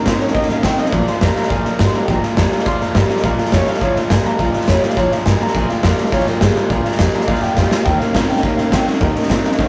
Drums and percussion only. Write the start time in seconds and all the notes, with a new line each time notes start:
0.06 kick, snare, hi-hat pedal
0.20 snare
0.28 snare
0.35 kick, snare
0.42 snare
0.49 snare
0.63 kick, snare, hi-hat pedal
0.78 snare
0.86 snare
0.92 kick, snare
1.07 snare
1.21 kick, snare, hi-hat pedal
1.36 snare
1.43 snare
1.50 kick, snare
1.65 snare
1.79 kick, snare, hi-hat pedal
1.94 snare
2.08 kick, snare
2.23 snare
2.37 kick, snare, hi-hat pedal
2.52 snare
2.59 snare
2.66 kick, snare
2.81 snare
2.95 kick, snare, hi-hat pedal
3.09 snare
3.17 snare
3.23 kick, snare
3.38 snare
3.45 snare
3.52 kick, snare, hi-hat pedal
3.67 snare
3.74 snare
3.81 kick, snare
3.96 snare
4.10 kick, snare, hi-hat pedal
4.25 snare
4.39 kick, snare
4.53 snare
4.61 snare
4.68 kick, snare, hi-hat pedal
4.83 snare
4.90 snare
4.97 kick, snare
5.12 snare
5.26 kick, snare, hi-hat pedal
5.40 snare
5.47 snare
5.54 kick, snare
5.69 snare
5.83 kick, snare, hi-hat pedal
5.98 snare
6.05 snare
6.12 kick, snare
6.20 snare
6.27 snare
6.41 kick, snare, hi-hat pedal
6.56 snare
6.70 kick, snare
6.85 snare
6.92 snare
6.99 kick, snare, hi-hat pedal
7.13 snare
7.21 snare
7.28 kick, snare
7.35 snare
7.42 snare
7.57 kick, snare, hi-hat pedal
7.71 snare
7.86 kick, snare
8.00 snare
8.15 kick, snare, hi-hat pedal
8.29 snare
8.36 snare
8.43 kick, snare
8.58 snare
8.72 kick, snare, hi-hat pedal
8.87 snare
8.94 snare
9.01 kick, snare
9.15 snare
9.23 snare
9.30 kick, snare, hi-hat pedal
9.44 snare
9.51 snare
9.59 kick, snare